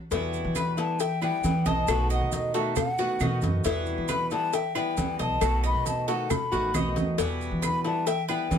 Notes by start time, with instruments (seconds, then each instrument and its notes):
0.11 upright bass E2, nylon-string guitar B2 E3 G3 B3 E4, cuban tres E4, cowbell, high conga, maracas
0.33 high conga, maracas
0.45 upright bass E3
0.55 cuban tres B4, flute B5, cowbell, high conga, claves, maracas
0.77 nylon-string guitar E3 G3 B3 E4, flute A5, cowbell, high conga, maracas
0.99 cuban tres E5, flute G5, muted nylon-string guitar stroke, cowbell, high conga, maracas
1.21 nylon-string guitar E3 G3 B3 E4, cuban tres B4, flute G5, high conga, claves, maracas
1.44 upright bass E3, nylon-string guitar E3 G3 B3 E4, cowbell, high conga, maracas
1.66 upright bass B1, cuban tres D#5, flute A5, cowbell, high conga, maracas
1.88 upright bass B1, nylon-string guitar B2 D#3 A3 B3 F#4, cuban tres A4, cowbell, claves, maracas
2.10 cuban tres D#5, flute F#5, high conga, maracas
2.21 upright bass B2
2.32 flute D#5, cowbell, high conga, maracas
2.54 nylon-string guitar D#3 A3 B3 F#4, cuban tres A4, flute E5, cowbell, high conga, maracas
2.76 flute F#5, muted nylon-string guitar stroke, cowbell, high conga, low conga, claves, maracas
2.98 nylon-string guitar D#3 A3 B3 F#4, cuban tres F#4, high conga, maracas
3.20 upright bass B2, nylon-string guitar D#3 A3 B3 F#4, cuban tres D#5, cowbell, high conga, claves, maracas
3.41 upright bass F#2, cowbell, high conga, maracas
3.64 upright bass E2, nylon-string guitar B2 E3 G3 B3 E4, cuban tres E4, cowbell, high conga, maracas
3.86 high conga, maracas
3.98 upright bass E3
4.08 cuban tres B4, flute B5, cowbell, high conga, claves, maracas
4.31 nylon-string guitar E3 G3 B3 E4, flute A5, cowbell, high conga, maracas
4.53 cuban tres E5, flute G5, muted nylon-string guitar stroke, cowbell, high conga, maracas
4.75 nylon-string guitar E3 G3 B3 E4, cuban tres B4, flute G5, high conga, claves, maracas
4.97 upright bass E3, nylon-string guitar E3 G3 B3 E4, cowbell, high conga, maracas
5.19 upright bass B1, cuban tres D#5, flute A5, cowbell, maracas
5.41 upright bass B1, nylon-string guitar B2 D#3 A3 B3 F#4, cuban tres A4, cowbell, high conga, claves, maracas
5.63 cuban tres D#5, flute B5, high conga, maracas
5.74 upright bass B2
5.86 flute A5, cowbell, high conga, maracas
6.08 nylon-string guitar D#3 A3 B3 F#4, cuban tres A4, flute F#5, cowbell, high conga, maracas
6.30 flute B5, muted nylon-string guitar stroke, cowbell, high conga, low conga, claves, maracas
6.51 upright bass A1, nylon-string guitar D#3 A3 B3 F#4, cuban tres F#4, high conga, maracas
6.74 upright bass B1, nylon-string guitar D#3 A3 B3 F#4, cuban tres D#5, cowbell, high conga, claves, maracas
6.96 upright bass D#2, cowbell, high conga, maracas
7.18 upright bass E2, nylon-string guitar B2 E3 G3 B3 E4, cuban tres E4, cowbell, maracas
7.41 high conga, maracas
7.51 upright bass E3
7.62 cuban tres B4, flute B5, cowbell, high conga, claves, maracas
7.84 nylon-string guitar E3 G3 B3 E4, flute A5, cowbell, high conga, maracas
8.07 cuban tres E5, flute G5, muted nylon-string guitar stroke, cowbell, high conga, maracas
8.28 nylon-string guitar E3 G3 B3 E4, cuban tres B4, flute G5, high conga, claves, maracas
8.51 nylon-string guitar E3 G3 B3 E4, upright bass E3, cowbell, high conga, maracas